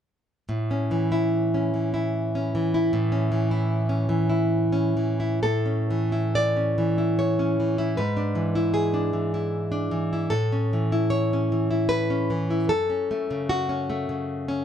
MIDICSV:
0, 0, Header, 1, 2, 480
1, 0, Start_track
1, 0, Key_signature, 3, "major"
1, 0, Tempo, 837989
1, 278, Time_signature, 3, 2, 24, 8
1, 1229, Tempo, 773196
1, 2189, Tempo, 815217
1, 2669, Tempo, 928793
1, 3629, Tempo, 839161
1, 4109, Tempo, 781250
1, 6029, Tempo, 794702
1, 8636, End_track
2, 0, Start_track
2, 0, Title_t, "Nylon-string guitar"
2, 0, Program_c, 0, 24
2, 279, Note_on_c, 0, 45, 55
2, 406, Note_on_c, 0, 61, 38
2, 522, Note_on_c, 0, 52, 41
2, 640, Note_on_c, 0, 64, 43
2, 877, Note_off_c, 0, 61, 0
2, 884, Note_on_c, 0, 61, 41
2, 989, Note_off_c, 0, 52, 0
2, 996, Note_on_c, 0, 52, 38
2, 1103, Note_off_c, 0, 64, 0
2, 1110, Note_on_c, 0, 64, 42
2, 1350, Note_off_c, 0, 61, 0
2, 1357, Note_on_c, 0, 61, 45
2, 1472, Note_off_c, 0, 52, 0
2, 1479, Note_on_c, 0, 52, 46
2, 1593, Note_off_c, 0, 64, 0
2, 1600, Note_on_c, 0, 64, 43
2, 1687, Note_off_c, 0, 45, 0
2, 1716, Note_on_c, 0, 45, 66
2, 1827, Note_off_c, 0, 61, 0
2, 1834, Note_on_c, 0, 61, 46
2, 1949, Note_off_c, 0, 52, 0
2, 1956, Note_on_c, 0, 52, 50
2, 2070, Note_off_c, 0, 64, 0
2, 2077, Note_on_c, 0, 64, 50
2, 2300, Note_off_c, 0, 61, 0
2, 2307, Note_on_c, 0, 61, 47
2, 2416, Note_off_c, 0, 52, 0
2, 2424, Note_on_c, 0, 52, 50
2, 2537, Note_off_c, 0, 64, 0
2, 2544, Note_on_c, 0, 64, 47
2, 2775, Note_off_c, 0, 61, 0
2, 2782, Note_on_c, 0, 61, 47
2, 2901, Note_off_c, 0, 52, 0
2, 2907, Note_on_c, 0, 52, 45
2, 3020, Note_off_c, 0, 64, 0
2, 3026, Note_on_c, 0, 64, 42
2, 3128, Note_off_c, 0, 45, 0
2, 3143, Note_off_c, 0, 64, 0
2, 3145, Note_on_c, 0, 69, 68
2, 3146, Note_off_c, 0, 61, 0
2, 3147, Note_off_c, 0, 52, 0
2, 3147, Note_on_c, 0, 45, 47
2, 3262, Note_on_c, 0, 61, 38
2, 3392, Note_on_c, 0, 52, 39
2, 3504, Note_on_c, 0, 64, 40
2, 3608, Note_off_c, 0, 69, 0
2, 3623, Note_on_c, 0, 74, 71
2, 3737, Note_off_c, 0, 61, 0
2, 3744, Note_on_c, 0, 61, 36
2, 3860, Note_off_c, 0, 52, 0
2, 3866, Note_on_c, 0, 52, 36
2, 3974, Note_off_c, 0, 64, 0
2, 3981, Note_on_c, 0, 64, 40
2, 4085, Note_off_c, 0, 74, 0
2, 4100, Note_on_c, 0, 73, 59
2, 4217, Note_off_c, 0, 61, 0
2, 4224, Note_on_c, 0, 61, 39
2, 4343, Note_off_c, 0, 52, 0
2, 4351, Note_on_c, 0, 52, 38
2, 4458, Note_off_c, 0, 64, 0
2, 4465, Note_on_c, 0, 64, 37
2, 4572, Note_off_c, 0, 45, 0
2, 4572, Note_off_c, 0, 73, 0
2, 4582, Note_on_c, 0, 71, 73
2, 4587, Note_on_c, 0, 44, 56
2, 4590, Note_off_c, 0, 64, 0
2, 4592, Note_off_c, 0, 61, 0
2, 4594, Note_off_c, 0, 52, 0
2, 4701, Note_on_c, 0, 62, 41
2, 4816, Note_on_c, 0, 52, 39
2, 4938, Note_on_c, 0, 64, 43
2, 5045, Note_off_c, 0, 71, 0
2, 5051, Note_on_c, 0, 68, 69
2, 5166, Note_off_c, 0, 62, 0
2, 5174, Note_on_c, 0, 62, 39
2, 5287, Note_off_c, 0, 52, 0
2, 5295, Note_on_c, 0, 52, 37
2, 5414, Note_off_c, 0, 64, 0
2, 5422, Note_on_c, 0, 64, 42
2, 5645, Note_off_c, 0, 62, 0
2, 5652, Note_on_c, 0, 62, 42
2, 5766, Note_off_c, 0, 52, 0
2, 5774, Note_on_c, 0, 52, 44
2, 5898, Note_off_c, 0, 64, 0
2, 5905, Note_on_c, 0, 64, 37
2, 5991, Note_off_c, 0, 68, 0
2, 5997, Note_off_c, 0, 44, 0
2, 6012, Note_on_c, 0, 69, 76
2, 6017, Note_on_c, 0, 45, 55
2, 6019, Note_off_c, 0, 62, 0
2, 6020, Note_off_c, 0, 52, 0
2, 6026, Note_off_c, 0, 64, 0
2, 6147, Note_on_c, 0, 61, 43
2, 6272, Note_on_c, 0, 52, 42
2, 6388, Note_on_c, 0, 64, 45
2, 6478, Note_off_c, 0, 69, 0
2, 6496, Note_on_c, 0, 73, 78
2, 6628, Note_off_c, 0, 61, 0
2, 6635, Note_on_c, 0, 61, 41
2, 6741, Note_off_c, 0, 52, 0
2, 6749, Note_on_c, 0, 52, 46
2, 6853, Note_off_c, 0, 64, 0
2, 6861, Note_on_c, 0, 64, 43
2, 6957, Note_off_c, 0, 73, 0
2, 6971, Note_on_c, 0, 71, 76
2, 7093, Note_off_c, 0, 61, 0
2, 7100, Note_on_c, 0, 61, 44
2, 7213, Note_off_c, 0, 52, 0
2, 7221, Note_on_c, 0, 52, 47
2, 7336, Note_off_c, 0, 64, 0
2, 7343, Note_on_c, 0, 64, 43
2, 7436, Note_off_c, 0, 45, 0
2, 7440, Note_off_c, 0, 71, 0
2, 7456, Note_on_c, 0, 69, 85
2, 7462, Note_on_c, 0, 42, 59
2, 7464, Note_off_c, 0, 52, 0
2, 7464, Note_off_c, 0, 61, 0
2, 7465, Note_off_c, 0, 64, 0
2, 7580, Note_on_c, 0, 61, 42
2, 7708, Note_on_c, 0, 57, 45
2, 7827, Note_on_c, 0, 49, 49
2, 7921, Note_off_c, 0, 69, 0
2, 7941, Note_on_c, 0, 66, 77
2, 8053, Note_off_c, 0, 61, 0
2, 8060, Note_on_c, 0, 61, 47
2, 8176, Note_off_c, 0, 57, 0
2, 8183, Note_on_c, 0, 57, 47
2, 8294, Note_off_c, 0, 49, 0
2, 8301, Note_on_c, 0, 49, 43
2, 8532, Note_off_c, 0, 61, 0
2, 8539, Note_on_c, 0, 61, 50
2, 8636, Note_off_c, 0, 42, 0
2, 8636, Note_off_c, 0, 49, 0
2, 8636, Note_off_c, 0, 57, 0
2, 8636, Note_off_c, 0, 61, 0
2, 8636, Note_off_c, 0, 66, 0
2, 8636, End_track
0, 0, End_of_file